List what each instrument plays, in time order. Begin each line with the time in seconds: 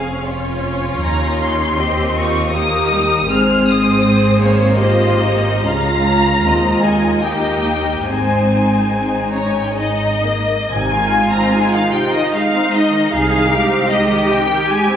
Already playing: double bass section F1, cello section F2, viola section C#4, violin section G#4 F5
0.26 violin section F4 C#5
1.02 double bass section D#2, cello section D#2, viola section D#4, violin section A#5
1.41 violin section C6
1.77 viola section C4 G4, violin section G4 D#5
2.16 violin section F4 C#6
2.53 viola section A#3 G4, violin section D#4 A#4 D#6
2.92 viola section G3
3.30 double bass section G#1, cello section G#2, viola section G#3 G#4, violin section C4 C5 F6
3.68 violin section D#6
4.05 viola section C4 G#4
4.41 viola section A#3, violin section C#5
4.79 violin section F4 D#5, viola section G4
5.21 violin section D#4
5.64 double bass section C#2, cello section C#2, viola section G#3 F4, violin section C#4 F5 A#5
6.44 double bass section D#2, cello section D#2, viola section G#3, violin section C4 D#5
6.83 violin section D#4 G#5
7.22 viola section A#3 D#4, violin section G4 G5
7.62 viola section A#3
8.05 double bass section G#1, cello section G#2, viola section G#3 D#4, violin section C4 C5 G#5
8.92 violin section C4
9.34 violin section C#4 C#5 A#5
9.47 violin section G#5
9.58 violin section G5
9.68 violin section G#5
9.78 violin section D#4 D#5
10.25 violin section A#3
10.70 double bass section G#1, viola section C3 D#4, cello section F4, violin section G#5
10.91 viola section D#3
11.12 viola section G#3
11.31 viola section C4, violin section A#5
11.52 viola section G#3, violin section G#5
11.72 viola section D#3, violin section F5
11.91 viola section C3, violin section G5
12.12 viola section D#3, violin section D#5
12.32 viola section G#3, cello section D#4, violin section F5
12.53 viola section C4
12.72 viola section G#3, violin section D#5
12.93 viola section D#3
13.12 double bass section C2, viola section C3, cello section G#4, violin section F5
13.31 viola section D#3
13.49 viola section G#3, cello section G4
13.70 viola section C4
13.90 viola section G#3, violin section D#5
14.09 viola section D#3
14.29 viola section C3, violin section G5
14.48 viola section D#3
14.68 viola section G#3, violin section G#5
14.88 viola section C4